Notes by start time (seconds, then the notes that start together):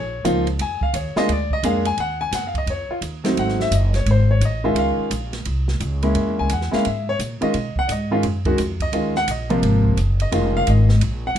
Already playing: A#1 C#5
0.24 C#2 F3 A#3 D#4 F4, hi-hat pedal, ride
0.47 ride
0.59 F2 G#5, ride
0.81 F5, muted upright bass stroke, kick
0.93 D#2 C#5, hi-hat pedal, ride
1.16 G#3 A#3 D4 F4 D#5, muted upright bass stroke, snare
1.28 D2 D5, ride
1.51 D#5, kick
1.63 F2 G#3 A#3 D4 G#4 F5, hi-hat pedal, ride
1.85 G#5, ride
1.97 D#2 F#5, ride
2.21 G#5
2.31 F#2 F#5, snare, hi-hat pedal, ride
2.47 F5
2.54 D#5, kick, ride
2.66 F2 C#5, ride
2.89 F4, muted upright bass stroke
3.01 D#2, hi-hat pedal, ride
3.24 F#3 A3 C4 D#4, snare, ride
3.37 G#1 F#5, ride
3.49 snare
3.60 E5, snare
3.71 F#1 D#5, hi-hat pedal, ride
3.94 C#5, snare, ride
4.06 G#1, ride
4.11 C5
4.31 C#5
4.40 A1, hi-hat pedal, ride
4.45 D#5
4.64 D#3 G#3 C#4 F4 E5
4.75 C#2 F5, ride
4.98 muted upright bass stroke
5.11 A#1, hi-hat pedal, ride
5.33 snare, ride
5.45 C2, ride
5.68 snare
5.80 C#2, hi-hat pedal, ride
6.03 G#3 A#3 C#4 E4, ride
6.15 F#2, ride
6.27 E2
6.39 C#2 G#5
6.50 E2 F#5, hi-hat pedal, ride
6.61 snare
6.71 G#3 A#3 C#4 E4 F5, muted upright bass stroke, snare
6.85 G#2 E5, ride
7.09 C#5
7.19 A#2, hi-hat pedal, ride
7.41 D#3 G#3 C#4 F4 D#5, muted upright bass stroke, ride
7.54 B2, ride
7.76 F#5, muted upright bass stroke, kick
7.87 G#2 D5, hi-hat pedal, ride
7.92 D#5
8.11 D#3 G#3 C#4 F4
8.23 F#2, ride
8.45 D#3 G#3 C#4 F#4, kick, ride
8.58 F2, hi-hat pedal, ride
8.80 D#5, kick, ride
8.92 D#2 D#3 G#3 C#4 F4, ride
9.15 F#5, snare
9.28 A#1 D#5, hi-hat pedal, ride
9.50 C3 F3 A#3 F4, ride
9.62 G#1, ride
9.85 kick
9.97 F#1, hi-hat pedal, ride
10.20 D#5, ride
10.32 F1 D#3 G#3 C#4 F4, ride
10.57 F5
10.67 G#1 D#5, hi-hat pedal, ride
10.89 snare
11.01 A#1, ride
11.27 F#5
11.35 C2